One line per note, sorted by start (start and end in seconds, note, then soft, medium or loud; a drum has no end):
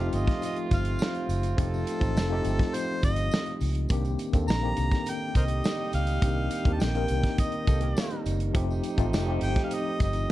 0.00 1.57 F3 medium
0.00 1.57 A3 medium
0.00 3.57 A3 medium
0.00 1.58 C4 medium
0.00 3.57 C4 medium
0.00 1.59 D#4 medium
0.00 3.57 F4 loud
0.00 1.60 G4 medium
0.08 0.16 F5 medium
0.13 0.26 G1 medium
0.13 0.43 D#5 medium
0.13 closed hi-hat medium
0.13 tambourine soft
0.27 kick medium
0.27 snare soft
0.27 closed hi-hat soft
0.42 0.57 D#5 medium
0.42 closed hi-hat medium
0.42 tambourine medium
0.56 closed hi-hat soft
0.71 0.96 G1 loud
0.71 1.26 F5 medium
0.71 kick medium
0.71 closed hi-hat medium
0.71 tambourine soft
0.85 closed hi-hat medium
0.99 snare loud
0.99 tambourine medium
1.15 closed hi-hat soft
1.29 1.54 F#1 medium
1.29 closed hi-hat medium
1.29 tambourine soft
1.43 closed hi-hat medium
1.43 tambourine soft
1.57 1.83 F1 loud
1.57 1.94 F3 medium
1.57 1.94 A3 medium
1.57 1.94 C4 medium
1.57 1.95 D#4 medium
1.57 1.95 G4 medium
1.57 2.76 A4 medium
1.57 kick loud
1.57 closed hi-hat loud
1.57 tambourine soft
1.74 tambourine soft
1.87 closed hi-hat medium
1.87 tambourine soft
2.00 2.14 A1 medium
2.00 2.25 F3 medium
2.00 2.25 A3 medium
2.00 2.26 C4 medium
2.00 2.26 D#4 medium
2.00 2.27 F4 medium
2.00 kick medium
2.00 closed hi-hat medium
2.00 tambourine soft
2.16 2.41 F1 medium
2.16 snare loud
2.16 tambourine medium
2.29 3.27 F3 medium
2.29 3.27 A3 medium
2.29 3.27 C4 medium
2.29 3.28 D#4 medium
2.29 3.28 G4 loud
2.45 2.57 G1 medium
2.45 closed hi-hat medium
2.45 tambourine soft
2.59 kick medium
2.59 snare soft
2.59 closed hi-hat soft
2.74 3.03 C5 loud
2.74 closed hi-hat medium
2.74 tambourine medium
3.03 3.28 G1 loud
3.03 3.58 D#5 loud
3.03 kick medium
3.03 closed hi-hat medium
3.03 tambourine soft
3.16 closed hi-hat medium
3.16 tambourine soft
3.31 snare loud
3.31 tambourine medium
3.46 closed hi-hat soft
3.60 3.86 C#2 medium
3.60 open hi-hat medium
3.60 tambourine soft
3.75 closed hi-hat medium
3.89 4.15 C2 loud
3.89 4.26 D#3 medium
3.89 4.26 A#3 medium
3.89 4.26 C4 medium
3.89 4.27 D4 medium
3.89 4.27 G4 loud
3.89 kick loud
3.89 closed hi-hat loud
3.89 tambourine soft
4.05 closed hi-hat soft
4.05 tambourine soft
4.19 closed hi-hat medium
4.19 tambourine soft
4.32 4.46 D#2 medium
4.32 4.57 D#3 medium
4.32 4.58 A#3 medium
4.32 4.58 C4 medium
4.32 4.58 D4 medium
4.32 4.59 A4 medium
4.32 kick medium
4.32 closed hi-hat soft
4.32 tambourine soft
4.48 4.73 A#1 loud
4.48 5.11 A#5 loud
4.48 snare loud
4.48 tambourine medium
4.62 5.59 D#3 medium
4.62 5.59 A#3 medium
4.62 5.60 C4 medium
4.62 5.60 D4 medium
4.62 5.61 G4 medium
4.77 4.90 C2 medium
4.77 closed hi-hat medium
4.77 tambourine soft
4.91 kick medium
4.91 snare soft
4.91 closed hi-hat soft
5.06 8.22 G3 medium
5.06 8.22 D#4 medium
5.06 8.22 G4 medium
5.06 5.36 G5 loud
5.06 closed hi-hat medium
5.06 tambourine medium
5.35 5.60 C2 medium
5.35 5.44 A#4 medium
5.35 5.43 C5 medium
5.35 5.90 D#5 medium
5.35 kick medium
5.35 closed hi-hat medium
5.35 tambourine medium
5.48 closed hi-hat medium
5.64 snare loud
5.64 tambourine medium
5.93 6.18 C#2 medium
5.93 6.74 F5 loud
5.93 closed hi-hat medium
5.93 tambourine soft
6.07 closed hi-hat medium
6.07 tambourine soft
6.22 6.47 C2 loud
6.22 6.58 D#3 medium
6.22 6.59 A#3 medium
6.22 6.59 C4 medium
6.22 6.59 D4 medium
6.22 6.60 G4 medium
6.22 kick loud
6.22 closed hi-hat loud
6.22 tambourine soft
6.50 closed hi-hat medium
6.50 tambourine soft
6.65 6.78 D#2 loud
6.65 6.90 D#3 medium
6.65 6.90 A#3 medium
6.65 6.90 C4 medium
6.65 6.91 D4 medium
6.65 6.91 G4 medium
6.65 kick medium
6.65 closed hi-hat soft
6.73 6.82 A5 medium
6.80 7.06 A#1 loud
6.80 7.38 G5 loud
6.80 snare loud
6.80 tambourine medium
6.94 7.92 D#3 medium
6.94 7.92 A#3 medium
6.94 7.92 C4 medium
6.94 7.93 D#4 medium
6.94 7.93 A#4 medium
6.94 closed hi-hat soft
7.08 7.22 C2 medium
7.08 closed hi-hat medium
7.08 tambourine soft
7.23 kick medium
7.23 snare soft
7.23 closed hi-hat soft
7.38 8.22 D#5 medium
7.38 kick medium
7.38 closed hi-hat medium
7.38 tambourine soft
7.52 closed hi-hat soft
7.67 7.92 C2 loud
7.67 7.82 C4 medium
7.67 7.82 A4 medium
7.67 kick medium
7.67 closed hi-hat medium
7.67 tambourine soft
7.81 7.96 A#3 medium
7.81 7.96 G4 medium
7.81 closed hi-hat medium
7.97 8.11 A3 medium
7.97 8.11 F4 medium
7.97 snare loud
7.97 tambourine medium
8.11 8.53 G3 medium
8.11 8.53 D#4 medium
8.11 closed hi-hat soft
8.26 8.51 F#1 medium
8.26 closed hi-hat medium
8.26 tambourine soft
8.40 closed hi-hat soft
8.53 8.80 F1 loud
8.53 8.91 F3 medium
8.53 8.91 A3 medium
8.53 10.32 C4 medium
8.53 8.92 C4 medium
8.53 10.32 D#4 medium
8.53 8.92 D#4 medium
8.53 10.32 G4 medium
8.53 8.92 G4 medium
8.53 kick loud
8.53 closed hi-hat loud
8.53 tambourine soft
8.71 tambourine soft
8.84 closed hi-hat medium
8.84 tambourine soft
8.97 9.11 A1 loud
8.97 9.22 F3 medium
8.97 9.23 A3 medium
8.97 9.23 C4 medium
8.97 9.23 D#4 medium
8.97 9.24 F4 medium
8.97 kick medium
8.97 closed hi-hat medium
8.97 tambourine soft
9.13 9.38 F1 loud
9.13 snare loud
9.13 tambourine medium
9.26 10.24 F3 medium
9.26 10.24 A3 medium
9.26 10.25 C4 medium
9.26 10.25 D#4 medium
9.26 10.26 G4 medium
9.41 9.55 G1 medium
9.41 9.63 G5 loud
9.41 closed hi-hat medium
9.41 tambourine soft
9.56 kick medium
9.56 snare soft
9.56 closed hi-hat soft
9.64 9.75 F5 medium
9.71 10.02 D#5 medium
9.71 closed hi-hat loud
9.71 tambourine soft
10.00 10.25 G1 medium
10.00 10.32 D#5 medium
10.00 kick medium
10.00 closed hi-hat medium
10.00 tambourine soft
10.13 closed hi-hat medium
10.13 tambourine soft